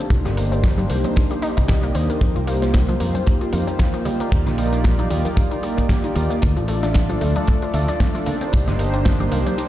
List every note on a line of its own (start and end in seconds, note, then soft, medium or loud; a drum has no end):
0.00 shaker medium
0.10 0.22 C2 medium
0.10 0.17 D#3 medium
0.10 1.39 A#3 loud
0.10 1.40 D4 medium
0.10 1.40 D#4 medium
0.10 1.40 G4 medium
0.10 1.41 C5 loud
0.10 kick loud
0.10 closed hi-hat medium
0.10 shaker medium
0.25 0.85 G1 medium
0.25 0.30 G3 loud
0.25 snare soft
0.25 closed hi-hat soft
0.25 low conga medium
0.25 shaker soft
0.37 0.43 A#3 medium
0.37 open hi-hat loud
0.52 0.55 C4 medium
0.52 closed hi-hat soft
0.52 shaker medium
0.64 0.67 D#3 medium
0.64 kick loud
0.64 snare loud
0.64 closed hi-hat medium
0.64 muted conga soft
0.64 shaker medium
0.78 0.83 G3 loud
0.78 closed hi-hat soft
0.78 high conga loud
0.78 shaker soft
0.90 1.01 C2 medium
0.90 0.96 A#3 medium
0.90 open hi-hat loud
0.90 muted conga medium
1.04 1.09 C4 medium
1.04 closed hi-hat soft
1.04 high conga medium
1.04 shaker medium
1.16 1.22 D#3 medium
1.16 kick loud
1.16 closed hi-hat medium
1.16 shaker medium
1.31 1.36 G3 loud
1.31 closed hi-hat soft
1.31 shaker soft
1.42 1.92 A#3 medium
1.42 1.46 D#4 loud
1.42 1.92 D#4 medium
1.42 1.93 G4 medium
1.42 1.92 D5 medium
1.42 1.93 D#5 loud
1.42 open hi-hat loud
1.57 1.91 C2 medium
1.57 1.64 D#4 medium
1.57 kick medium
1.57 closed hi-hat soft
1.57 shaker medium
1.68 1.75 G4 loud
1.68 kick loud
1.68 snare loud
1.68 closed hi-hat medium
1.68 shaker medium
1.83 1.91 A#3 loud
1.83 closed hi-hat soft
1.83 shaker soft
1.95 2.06 D#2 medium
1.95 2.04 C4 medium
1.95 open hi-hat loud
2.10 2.17 A#3 medium
2.10 closed hi-hat soft
2.10 shaker medium
2.20 2.33 F2 medium
2.20 2.27 D#3 medium
2.20 4.02 A#3 medium
2.20 4.02 D#4 medium
2.20 4.03 F4 medium
2.20 4.03 G4 medium
2.20 4.03 C5 loud
2.20 kick loud
2.20 closed hi-hat medium
2.20 shaker medium
2.36 2.96 C2 medium
2.36 2.41 F3 loud
2.36 closed hi-hat soft
2.36 shaker soft
2.47 2.54 A#3 medium
2.47 open hi-hat loud
2.62 2.65 C4 medium
2.62 snare soft
2.62 closed hi-hat soft
2.62 shaker medium
2.74 2.78 D#3 medium
2.74 kick loud
2.74 snare loud
2.74 closed hi-hat medium
2.74 muted conga medium
2.74 shaker medium
2.89 2.93 F3 loud
2.89 closed hi-hat soft
2.89 high conga loud
2.89 shaker soft
3.00 3.12 F2 medium
3.00 3.06 A#3 medium
3.00 open hi-hat loud
3.00 muted conga medium
3.15 3.20 C4 medium
3.15 closed hi-hat soft
3.15 high conga medium
3.15 shaker medium
3.26 3.33 D#3 medium
3.26 kick loud
3.26 closed hi-hat medium
3.26 shaker medium
3.41 3.46 F3 loud
3.41 closed hi-hat soft
3.41 shaker soft
3.53 3.64 F2 medium
3.53 3.59 A#3 medium
3.53 open hi-hat loud
3.67 3.70 C4 medium
3.67 closed hi-hat soft
3.67 muted conga medium
3.67 shaker medium
3.79 3.83 D#3 medium
3.79 kick loud
3.79 snare loud
3.79 closed hi-hat medium
3.79 shaker medium
3.94 3.99 F3 loud
3.94 closed hi-hat soft
3.94 shaker soft
4.05 4.11 G3 medium
4.05 open hi-hat loud
4.05 low conga medium
4.20 4.25 A#3 medium
4.20 closed hi-hat soft
4.20 shaker medium
4.31 4.43 D#2 medium
4.31 4.38 D3 medium
4.31 5.60 A#3 loud
4.31 5.60 D#4 medium
4.31 5.61 F4 medium
4.31 5.61 G4 medium
4.31 5.61 D5 loud
4.31 kick loud
4.31 closed hi-hat medium
4.31 shaker medium
4.46 5.06 A#1 medium
4.46 4.51 D#3 loud
4.46 snare soft
4.46 closed hi-hat soft
4.46 low conga medium
4.46 shaker soft
4.58 4.64 G3 medium
4.58 open hi-hat loud
4.73 4.76 A#3 medium
4.73 closed hi-hat soft
4.73 shaker medium
4.84 4.88 D3 medium
4.84 kick loud
4.84 snare loud
4.84 closed hi-hat medium
4.84 muted conga medium
4.84 shaker medium
4.99 5.04 D#3 loud
4.99 closed hi-hat soft
4.99 high conga medium
4.99 shaker soft
5.10 5.22 D#2 medium
5.10 5.17 G3 medium
5.10 open hi-hat loud
5.10 muted conga medium
5.25 5.30 A#3 medium
5.25 closed hi-hat soft
5.25 high conga medium
5.25 shaker medium
5.37 5.43 D3 medium
5.37 kick loud
5.37 closed hi-hat medium
5.37 shaker medium
5.51 5.56 D#3 loud
5.51 closed hi-hat soft
5.51 shaker soft
5.62 5.69 G3 medium
5.62 6.39 A#3 medium
5.62 6.39 D#4 medium
5.62 6.40 F4 medium
5.62 6.40 G4 medium
5.62 6.40 D5 loud
5.62 open hi-hat loud
5.77 5.81 A#3 medium
5.77 kick medium
5.77 closed hi-hat soft
5.77 shaker medium
5.89 5.93 D3 medium
5.89 kick loud
5.89 snare loud
5.89 closed hi-hat medium
5.89 shaker medium
6.04 6.09 D#3 loud
6.04 closed hi-hat soft
6.04 shaker soft
6.15 6.27 D#2 medium
6.15 6.22 G3 medium
6.15 open hi-hat loud
6.30 6.35 A#3 medium
6.30 closed hi-hat soft
6.30 shaker medium
6.41 6.54 D2 loud
6.41 6.48 D3 medium
6.41 8.23 A3 loud
6.41 8.24 D4 medium
6.41 8.24 F4 medium
6.41 8.24 A4 medium
6.41 8.24 D5 loud
6.41 kick loud
6.41 closed hi-hat medium
6.41 shaker medium
6.57 7.17 A1 medium
6.57 6.62 F3 loud
6.57 closed hi-hat soft
6.57 shaker soft
6.68 6.74 A3 medium
6.68 open hi-hat loud
6.83 6.86 D4 medium
6.83 snare soft
6.83 closed hi-hat soft
6.83 shaker medium
6.94 6.99 D3 medium
6.94 kick loud
6.94 snare loud
6.94 closed hi-hat medium
6.94 muted conga medium
6.94 shaker medium
7.09 7.14 F3 loud
7.09 closed hi-hat soft
7.09 high conga medium
7.09 shaker soft
7.21 7.33 D2 medium
7.21 7.27 A3 medium
7.21 open hi-hat loud
7.21 muted conga medium
7.36 7.41 D4 medium
7.36 closed hi-hat soft
7.36 high conga medium
7.36 shaker medium
7.47 7.54 D3 medium
7.47 kick loud
7.47 closed hi-hat medium
7.47 shaker medium
7.62 7.67 F3 loud
7.62 closed hi-hat soft
7.62 shaker soft
7.74 7.85 D2 medium
7.74 7.80 A3 medium
7.74 open hi-hat loud
7.88 7.92 D4 medium
7.88 closed hi-hat soft
7.88 muted conga medium
7.88 shaker medium
8.00 8.04 D3 medium
8.00 kick loud
8.00 snare loud
8.00 closed hi-hat medium
8.00 shaker medium
8.15 8.20 F3 loud
8.15 closed hi-hat soft
8.15 shaker soft
8.26 8.32 A#3 medium
8.26 open hi-hat loud
8.26 low conga loud
8.41 8.46 C4 medium
8.41 closed hi-hat soft
8.41 shaker medium
8.52 8.64 C2 loud
8.52 8.59 D#3 medium
8.52 9.68 A#3 loud
8.52 9.68 D4 medium
8.52 9.68 D#4 medium
8.52 9.68 G4 medium
8.52 9.68 C5 loud
8.52 kick loud
8.52 closed hi-hat medium
8.52 shaker medium
8.67 9.27 G1 medium
8.67 8.72 G3 loud
8.67 snare soft
8.67 closed hi-hat soft
8.67 low conga loud
8.67 shaker soft
8.79 8.85 A#3 medium
8.79 open hi-hat loud
8.94 8.97 C4 medium
8.94 closed hi-hat soft
8.94 shaker medium
9.05 9.09 D#3 medium
9.05 kick loud
9.05 snare loud
9.05 closed hi-hat medium
9.05 muted conga medium
9.05 shaker medium
9.20 9.25 G3 loud
9.20 closed hi-hat soft
9.20 high conga medium
9.20 shaker soft
9.31 9.43 C2 medium
9.31 9.38 A#3 medium
9.31 open hi-hat loud
9.31 muted conga medium
9.46 9.51 C4 medium
9.46 closed hi-hat soft
9.46 high conga medium
9.46 shaker medium
9.58 9.64 D#3 medium
9.58 closed hi-hat medium
9.58 shaker medium